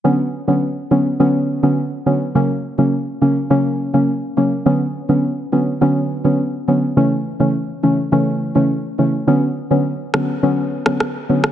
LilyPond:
<<
  \new Staff \with { instrumentName = "Synth stab" } { \clef bass \time 4/4 \key b \minor \tempo 4 = 104 <d fis b cis'>16 r8 <d fis b cis'>16 r8 <d fis b cis'>16 r16 <d fis b cis'>8. <d fis b cis'>16 r8 <d fis b cis'>16 r16 | <cis fis ais cis'>16 r8 <cis fis ais cis'>16 r8 <cis fis ais cis'>16 r16 <cis fis ais cis'>8. <cis fis ais cis'>16 r8 <cis fis ais cis'>16 r16 | <d fis b cis'>16 r8 <d fis b cis'>16 r8 <d fis b cis'>16 r16 <d fis b cis'>8. <d fis b cis'>16 r8 <d fis b cis'>16 r16 | <cis e a cis'>16 r8 <cis e a cis'>16 r8 <cis e a cis'>16 r16 <cis e a cis'>8. <cis e a cis'>16 r8 <cis e a cis'>16 r16 |
<d fis b cis'>16 r8 <d fis b cis'>16 r8 <d fis b cis'>16 r16 <d fis b cis'>8. <d fis b cis'>16 r8 <d fis b cis'>16 r16 | }
  \new DrumStaff \with { instrumentName = "Drums" } \drummode { \time 4/4 r4 r4 r4 r4 | r4 r4 r4 r4 | r4 r4 r4 r4 | r4 r4 r4 r4 |
r4 r8 ss8 r8. ss16 ss8. ss16 | }
>>